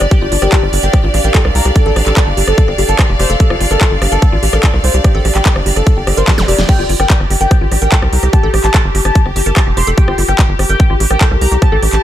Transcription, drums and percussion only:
0.01 cross-stick, closed hi-hat
0.11 kick, cross-stick, closed hi-hat
0.32 open hi-hat
0.42 cross-stick, closed hi-hat
0.52 kick, clap, closed hi-hat
0.63 cross-stick
0.73 open hi-hat
0.83 closed hi-hat
0.93 kick, cross-stick, closed hi-hat
1.14 cross-stick, open hi-hat
1.24 closed hi-hat
1.35 kick, clap, closed hi-hat
1.45 cross-stick
1.55 open hi-hat
1.65 cross-stick, closed hi-hat
1.76 kick, closed hi-hat
1.96 cross-stick, open hi-hat
2.07 clap, closed hi-hat
2.17 kick, cross-stick, clap, closed hi-hat
2.37 open hi-hat
2.48 cross-stick, closed hi-hat
2.58 kick, closed hi-hat
2.68 cross-stick
2.78 open hi-hat
2.89 closed hi-hat
2.99 kick, cross-stick, clap, closed hi-hat
3.19 cross-stick, open hi-hat
3.30 closed hi-hat
3.40 kick, closed hi-hat
3.50 cross-stick
3.61 open hi-hat
3.71 cross-stick, closed hi-hat
3.81 kick, clap, closed hi-hat
4.02 cross-stick, open hi-hat
4.12 closed hi-hat
4.22 kick, cross-stick, closed hi-hat
4.43 open hi-hat
4.53 cross-stick, closed hi-hat
4.63 kick, clap, closed hi-hat
4.74 cross-stick
4.84 open hi-hat
4.94 closed hi-hat
5.04 kick, cross-stick, closed hi-hat
5.25 cross-stick, open hi-hat
5.35 clap, closed hi-hat
5.46 kick, clap, closed hi-hat
5.56 cross-stick
5.66 open hi-hat
5.76 cross-stick, closed hi-hat
5.87 kick, closed hi-hat
6.07 cross-stick, open hi-hat
6.17 closed hi-hat
6.28 kick, snare, clap, closed hi-hat
6.38 snare
6.48 open hi-hat
6.59 snare, closed hi-hat
6.69 kick, cross-stick, closed hi-hat, crash
6.89 open hi-hat
7.00 cross-stick, closed hi-hat
7.10 kick, clap, closed hi-hat
7.20 cross-stick
7.30 open hi-hat
7.41 closed hi-hat
7.51 kick, cross-stick, closed hi-hat
7.72 cross-stick, open hi-hat
7.82 closed hi-hat
7.92 kick, clap, closed hi-hat
8.02 cross-stick
8.13 open hi-hat
8.23 cross-stick, closed hi-hat
8.33 kick, closed hi-hat
8.54 cross-stick, open hi-hat
8.64 clap, closed hi-hat
8.74 kick, cross-stick, clap, closed hi-hat
8.95 open hi-hat
9.05 cross-stick, closed hi-hat
9.15 kick, closed hi-hat
9.26 cross-stick
9.36 open hi-hat
9.46 closed hi-hat
9.56 kick, cross-stick, clap, closed hi-hat
9.77 cross-stick, open hi-hat
9.87 closed hi-hat
9.98 kick, closed hi-hat
10.08 cross-stick
10.18 open hi-hat
10.28 cross-stick, closed hi-hat
10.39 kick, clap, closed hi-hat
10.59 cross-stick, open hi-hat
10.70 closed hi-hat
10.80 kick, cross-stick, closed hi-hat
11.00 open hi-hat
11.11 cross-stick, closed hi-hat
11.21 kick, clap, closed hi-hat
11.31 cross-stick
11.41 open hi-hat
11.52 closed hi-hat
11.62 kick, cross-stick, closed hi-hat
11.83 cross-stick, open hi-hat
11.93 clap, closed hi-hat

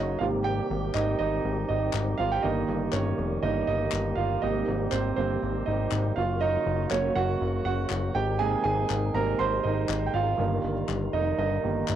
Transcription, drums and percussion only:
0.95 clap
1.93 clap
2.93 clap
3.92 clap
4.92 clap
5.92 clap
6.91 clap
7.90 clap
8.90 clap
9.89 clap
10.89 clap
11.88 clap

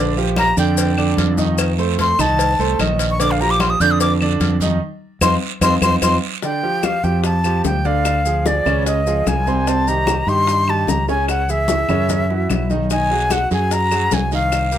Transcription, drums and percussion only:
0.16 high conga, maracas
0.36 cowbell, high conga, short guiro, claves, maracas
0.57 high conga, short guiro, maracas
0.77 cowbell, high conga, long guiro, maracas
0.97 high conga, claves, maracas
1.17 cowbell, high conga, short guiro, maracas
1.37 high conga, short guiro, maracas
1.58 cowbell, high conga, long guiro, claves, maracas
1.78 high conga, maracas
1.98 cowbell, high conga, short guiro, maracas
2.19 high conga, low conga, short guiro, claves, maracas
2.39 cowbell, high conga, long guiro, maracas
2.59 high conga, maracas
2.79 cowbell, high conga, short guiro, claves, maracas
2.99 cowbell, high conga, short guiro, maracas
3.19 cowbell, high conga, long guiro, maracas
3.40 high conga, maracas
3.60 cowbell, high conga, short guiro, claves, maracas
3.81 short guiro, maracas
4.00 cowbell, long guiro, maracas
4.21 high conga, claves, maracas
4.40 cowbell, high conga, short guiro, maracas
4.60 high conga, short guiro, maracas
5.21 cowbell, high conga, long guiro, claves, maracas
5.61 cowbell, high conga, long guiro, claves, maracas
5.82 cowbell, high conga, long guiro, claves, maracas
6.02 cowbell, high conga, long guiro, claves, maracas
6.43 high bongo, high conga, maracas
6.63 high conga
6.83 high bongo, high conga, claves, maracas
7.04 high bongo, maracas
7.24 high bongo, maracas
7.44 high bongo, high conga, claves, maracas
7.64 high bongo, low bongo, high conga, maracas
7.85 high bongo, high conga, maracas
8.05 high bongo, high conga, claves, maracas
8.25 high conga, maracas
8.46 high bongo, high conga, maracas
8.66 high bongo, low conga, claves, maracas
8.86 high bongo, high conga, maracas
9.07 high bongo, high conga, maracas
9.27 high bongo, low bongo, high conga, claves, maracas
9.47 high bongo, high conga, maracas
9.67 high bongo, high conga, maracas
9.87 high conga, maracas
10.07 high bongo, high conga, claves, maracas
10.27 high bongo, high conga, maracas
10.47 high bongo, high conga, maracas
10.67 high bongo, high conga, claves
10.87 high bongo, low bongo, high conga, maracas
11.07 high bongo, high conga, maracas
11.28 high bongo, high conga, claves, maracas
11.48 high conga, maracas
11.68 high bongo, high conga, maracas
11.88 high bongo, low conga, claves, maracas
12.09 high bongo, high conga, low conga, maracas
12.30 high bongo, high conga
12.50 high bongo, low bongo, high conga, claves, maracas
12.70 high bongo, high conga, maracas
12.90 high bongo, high conga, long guiro, maracas
13.10 high conga
13.30 high bongo, high conga, short guiro, claves, maracas
13.50 high bongo, high conga, short guiro, maracas
13.71 high bongo, high conga, long guiro, maracas
13.91 high bongo, high conga, claves, maracas
14.11 high bongo, low bongo, high conga, short guiro, maracas
14.32 high bongo, high conga, short guiro, maracas
14.52 high bongo, high conga, long guiro, claves, maracas
14.72 high conga, maracas

